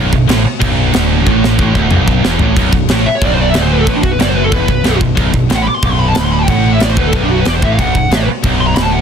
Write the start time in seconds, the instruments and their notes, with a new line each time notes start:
Already playing: picked electric bass B0, distorted electric guitar B1
0.13 picked electric bass B0, distorted electric guitar B1, kick
0.27 picked electric bass A1, distorted electric guitar A2, snare, crash
0.44 muted distorted electric guitar stroke, muted picked electric bass stroke
0.60 picked electric bass B0, distorted electric guitar B1, kick, crash
0.93 picked electric bass D1, distorted electric guitar D2, snare, crash
1.26 picked electric bass A1, distorted electric guitar A2, kick
1.44 snare
1.58 picked electric bass A1, distorted electric guitar A2, kick
1.75 picked electric bass D1, distorted electric guitar D2, kick
1.91 picked electric bass B0, distorted electric guitar B1, mid tom
2.08 kick
2.24 picked electric bass E1, distorted electric guitar E2, snare
2.39 picked electric bass A1, distorted electric guitar A2, floor tom
2.56 picked electric bass B0, distorted electric guitar B1, kick, crash
2.73 picked electric bass B0, distorted electric guitar B1, kick
2.88 picked electric bass A1, distorted electric guitar A2, snare, crash
3.06 lead electric guitar E5, muted distorted electric guitar stroke, muted picked electric bass stroke
3.15 lead electric guitar C#5
3.21 picked electric bass B0, distorted electric guitar B1, lead electric guitar D5, kick, crash
3.33 lead electric guitar C5
3.41 lead electric guitar D5
3.50 lead electric guitar E5
3.54 picked electric bass D1, distorted electric guitar D2, lead electric guitar D5, snare, crash
3.63 lead electric guitar C5
3.72 lead electric guitar B4
3.80 lead electric guitar A4
3.86 picked electric bass A1, distorted electric guitar A2, lead electric guitar B4, kick, crash
3.94 lead electric guitar D4
4.02 picked electric bass B0, distorted electric guitar B1, lead electric guitar F#4, kick
4.11 lead electric guitar B4
4.19 picked electric bass F#1, distorted electric guitar F#2, lead electric guitar D5, snare, crash
4.28 lead electric guitar C5
4.35 lead electric guitar B4
4.44 lead electric guitar A4
4.51 picked electric bass E1, distorted electric guitar E2, lead electric guitar B4, kick, crash
4.68 picked electric bass B0, distorted electric guitar B1, kick
4.84 picked electric bass B0, distorted electric guitar B1, snare, crash
5.00 picked electric bass B0, distorted electric guitar B1, kick
5.15 picked electric bass B0, distorted electric guitar B1, kick, crash
5.32 picked electric bass B0, distorted electric guitar B1, kick
5.49 picked electric bass A1, distorted electric guitar A2, snare, crash
5.56 lead electric guitar F#5
5.62 lead electric guitar B5
5.66 lead electric guitar D6, muted distorted electric guitar stroke, muted picked electric bass stroke
5.75 lead electric guitar C6
5.82 picked electric bass B0, distorted electric guitar B1, lead electric guitar D6, kick, crash
5.91 lead electric guitar C6
6.00 lead electric guitar B5
6.08 lead electric guitar A5
6.15 picked electric bass D1, distorted electric guitar D2, lead electric guitar B5, snare, crash
6.24 lead electric guitar C6
6.32 lead electric guitar B5
6.39 lead electric guitar G5 A5
6.47 picked electric bass A1, distorted electric guitar A2, lead electric guitar F#5, kick, crash
6.73 lead electric guitar E5
6.80 picked electric bass A1, distorted electric guitar A2, lead electric guitar D5, snare, crash
6.89 lead electric guitar C5
6.97 picked electric bass D1, distorted electric guitar D2, lead electric guitar B4, kick
7.07 lead electric guitar A4
7.12 picked electric bass B0, distorted electric guitar B1, lead electric guitar B4, kick, crash
7.22 lead electric guitar D4
7.30 lead electric guitar F#4
7.40 lead electric guitar B4
7.45 picked electric bass E1, distorted electric guitar E2, lead electric guitar D5, snare, crash
7.55 lead electric guitar C5
7.61 picked electric bass A1, distorted electric guitar A2, lead electric guitar E5, kick
7.72 lead electric guitar F5
7.78 picked electric bass B0, distorted electric guitar B1, lead electric guitar F#5, kick, crash
7.95 picked electric bass B0, distorted electric guitar B1, kick
8.10 picked electric bass A1, distorted electric guitar A2, snare, crash
8.28 muted distorted electric guitar stroke, muted picked electric bass stroke
8.43 picked electric bass B0, distorted electric guitar B1, kick, crash
8.61 lead electric guitar C6
8.67 lead electric guitar A#5
8.75 picked electric bass D1, distorted electric guitar D2, lead electric guitar B5, snare, crash
8.83 lead electric guitar A5
8.90 lead electric guitar F#5